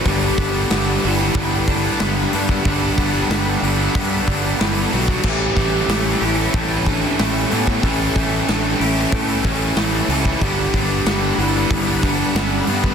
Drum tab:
CC |----------------|----------------|x---------------|----------------|
HH |o---o-o-o-o-o-o-|o-o-o-o-o-o-o-o-|--o-o-o-o-o-o-o-|o-o-o-o-o-o-o-o-|
SD |----o-------o-o-|----o-------o-o-|----o-------o-o-|----o-------o-o-|
BD |o-o-----o-o----o|o-o-----o-o----o|o-o-----o-o----o|o-o-----o-o----o|

CC |----------------|
HH |o-o-o-o-o-o-o-o-|
SD |----o-------o---|
BD |o-o-----o-o----o|